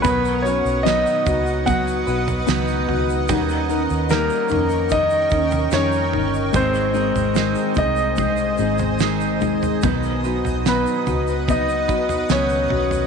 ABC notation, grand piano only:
X:1
M:4/4
L:1/8
Q:1/4=74
K:Bmix
V:1 name="Grand piano"
[B,B] [Cc] [Dd]2 [Ff]3 z | z2 [^A,^A]2 [Dd]2 [Cc]2 | [^B,^B]3 [Dd]4 z | z2 [B,B]2 [Dd]2 [Cc]2 |]